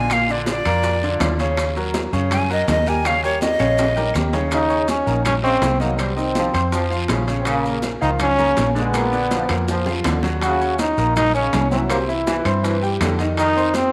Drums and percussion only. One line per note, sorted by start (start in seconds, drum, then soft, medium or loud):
0.10 high bongo medium
0.10 high timbale medium
0.10 long guiro medium
0.10 claves medium
0.10 maracas medium
0.28 high bongo soft
0.28 high conga soft
0.28 maracas soft
0.46 high bongo medium
0.46 high conga medium
0.46 high timbale medium
0.46 low timbale medium
0.46 short guiro medium
0.46 maracas medium
0.65 high bongo soft
0.65 high conga soft
0.65 high timbale medium
0.65 short guiro medium
0.65 claves medium
0.65 maracas soft
0.83 high bongo medium
0.83 high conga soft
0.83 long guiro medium
0.83 maracas medium
1.02 high conga soft
1.02 maracas soft
1.20 high bongo medium
1.20 low bongo medium
1.20 high conga medium
1.20 high timbale loud
1.20 low timbale medium
1.20 short guiro medium
1.20 claves medium
1.20 maracas medium
1.39 high bongo soft
1.39 high conga soft
1.39 high timbale medium
1.39 short guiro medium
1.39 maracas soft
1.57 high bongo medium
1.57 high conga soft
1.57 high timbale medium
1.57 long guiro medium
1.57 claves medium
1.57 maracas medium
1.75 high conga soft
1.75 maracas soft
1.94 high bongo medium
1.94 high conga medium
1.94 high timbale medium
1.94 low timbale medium
1.94 short guiro medium
1.94 maracas medium
2.13 short guiro medium
2.13 maracas soft
2.31 high bongo medium
2.31 high conga soft
2.31 low conga medium
2.31 high timbale loud
2.31 long guiro medium
2.31 claves medium
2.31 maracas medium
2.49 high conga soft
2.49 maracas soft
2.68 high bongo medium
2.68 low bongo medium
2.68 high conga medium
2.68 high timbale medium
2.68 low timbale medium
2.68 short guiro medium
2.68 maracas medium
2.86 high conga medium
2.86 short guiro medium
2.86 maracas soft
3.04 high bongo medium
3.04 high timbale medium
3.04 long guiro medium
3.04 claves medium
3.04 maracas medium
3.24 high bongo soft
3.24 high conga soft
3.24 maracas soft
3.41 high bongo medium
3.41 high conga medium
3.41 high timbale medium
3.41 short guiro medium
3.41 maracas medium
3.59 high bongo soft
3.59 high conga soft
3.59 high timbale loud
3.59 short guiro medium
3.59 claves medium
3.59 maracas soft
3.77 high bongo medium
3.77 high conga soft
3.77 high timbale medium
3.77 long guiro medium
3.77 maracas medium
3.97 high conga soft
3.97 low timbale medium
3.97 maracas soft
4.14 high bongo medium
4.14 low bongo medium
4.14 high conga medium
4.14 short guiro medium
4.14 claves medium
4.14 maracas medium
4.33 high bongo soft
4.33 low timbale medium
4.33 short guiro medium
4.33 maracas soft
4.51 high bongo medium
4.51 high conga soft
4.51 high timbale medium
4.51 long guiro medium
4.51 claves medium
4.51 maracas medium
4.70 high conga soft
4.70 maracas soft
4.88 high bongo medium
4.88 high conga medium
4.88 high timbale medium
4.88 low timbale medium
4.88 short guiro medium
4.88 maracas medium
5.07 short guiro medium
5.07 maracas soft
5.25 high bongo medium
5.25 high conga soft
5.25 low conga medium
5.25 high timbale medium
5.25 long guiro medium
5.25 claves medium
5.25 maracas medium
5.44 high conga soft
5.44 maracas soft
5.62 high bongo medium
5.62 low bongo medium
5.62 high conga medium
5.62 high timbale medium
5.62 low timbale medium
5.62 short guiro medium
5.62 maracas medium
5.80 high conga medium
5.80 short guiro medium
5.80 maracas soft
5.99 high bongo medium
5.99 high conga soft
5.99 high timbale medium
5.99 long guiro medium
5.99 claves medium
5.99 maracas medium
6.17 high bongo soft
6.17 high conga soft
6.17 maracas soft
6.35 high bongo medium
6.35 high conga loud
6.35 high timbale medium
6.35 low timbale medium
6.35 short guiro medium
6.35 maracas medium
6.54 high bongo soft
6.54 high conga soft
6.54 high timbale medium
6.54 short guiro medium
6.54 claves medium
6.54 maracas soft
6.72 high bongo medium
6.72 high conga soft
6.72 long guiro medium
6.72 maracas medium
6.91 high conga soft
6.91 maracas soft
7.08 high bongo medium
7.08 low bongo medium
7.08 high conga medium
7.08 high timbale medium
7.08 low timbale medium
7.08 short guiro medium
7.08 claves medium
7.08 maracas medium
7.27 high bongo soft
7.27 high conga soft
7.27 high timbale medium
7.27 short guiro medium
7.27 maracas soft
7.45 high bongo medium
7.45 high conga soft
7.45 high timbale medium
7.45 long guiro medium
7.45 claves medium
7.45 maracas medium
7.65 high conga soft
7.65 maracas soft
7.82 high bongo medium
7.82 high conga medium
7.82 high timbale medium
7.82 low timbale medium
7.82 short guiro medium
7.82 maracas medium
8.02 short guiro medium
8.02 maracas soft
8.19 high bongo medium
8.19 high conga soft
8.19 low conga medium
8.19 high timbale medium
8.19 long guiro medium
8.19 claves medium
8.19 maracas medium
8.38 high conga soft
8.38 low conga medium
8.38 maracas soft
8.57 high bongo medium
8.57 low bongo medium
8.57 high conga medium
8.57 high timbale medium
8.57 low timbale medium
8.57 short guiro medium
8.57 maracas medium
8.76 high conga medium
8.76 short guiro medium
8.76 maracas soft
8.94 high bongo medium
8.94 high conga soft
8.94 high timbale medium
8.94 long guiro medium
8.94 claves medium
8.94 maracas medium
9.13 high bongo soft
9.13 high conga soft
9.13 maracas soft
9.31 high bongo medium
9.31 high conga medium
9.31 high timbale medium
9.31 low timbale medium
9.31 short guiro medium
9.31 maracas medium
9.49 high bongo medium
9.49 high timbale medium
9.49 short guiro medium
9.49 claves medium
9.49 maracas soft
9.68 high bongo medium
9.68 high conga soft
9.68 long guiro medium
9.68 maracas medium
9.86 low bongo medium
9.86 high conga soft
9.86 maracas soft
10.04 low bongo medium
10.04 high conga medium
10.04 high timbale medium
10.04 low timbale medium
10.04 short guiro medium
10.04 claves medium
10.04 maracas medium
10.23 low bongo medium
10.23 high conga soft
10.23 high timbale medium
10.23 short guiro medium
10.23 maracas soft
10.41 high bongo medium
10.41 high conga soft
10.41 high timbale medium
10.41 long guiro medium
10.41 claves medium
10.41 maracas medium
10.61 high conga soft
10.61 maracas soft
10.79 high bongo medium
10.79 high conga medium
10.79 high timbale medium
10.79 low timbale medium
10.79 short guiro medium
10.79 maracas medium
10.97 short guiro medium
10.97 maracas soft
11.16 high bongo medium
11.16 high conga soft
11.16 low conga medium
11.16 high timbale medium
11.16 long guiro medium
11.16 claves medium
11.16 maracas medium
11.34 high conga soft
11.34 maracas soft
11.53 high bongo medium
11.53 low bongo medium
11.53 high conga medium
11.53 high timbale medium
11.53 low timbale medium
11.53 short guiro medium
11.53 maracas medium
11.71 high conga medium
11.71 short guiro medium
11.71 maracas soft
11.90 high bongo medium
11.90 high timbale medium
11.90 long guiro medium
11.90 claves medium
11.90 maracas medium
12.09 high bongo soft
12.09 high conga soft
12.09 maracas soft
12.27 high bongo medium
12.27 high conga medium
12.27 high timbale medium
12.27 low timbale medium
12.27 short guiro medium
12.27 maracas medium
12.45 high bongo soft
12.45 high conga soft
12.45 high timbale medium
12.45 short guiro medium
12.45 claves medium
12.45 maracas soft
12.64 high bongo medium
12.64 high conga soft
12.64 long guiro medium
12.64 maracas medium
12.82 high conga soft
12.82 maracas soft
13.01 high bongo medium
13.01 low bongo medium
13.01 high conga medium
13.01 high timbale loud
13.01 low timbale medium
13.01 short guiro medium
13.01 claves medium
13.01 maracas medium
13.19 high bongo soft
13.19 high timbale medium
13.19 short guiro medium
13.19 maracas soft
13.37 high bongo medium
13.37 high conga soft
13.37 high timbale medium
13.37 long guiro medium
13.37 claves medium
13.37 maracas medium
13.56 high conga soft
13.56 maracas soft
13.74 high bongo medium
13.74 high conga medium
13.74 high timbale medium
13.74 low timbale medium
13.74 short guiro medium
13.74 maracas medium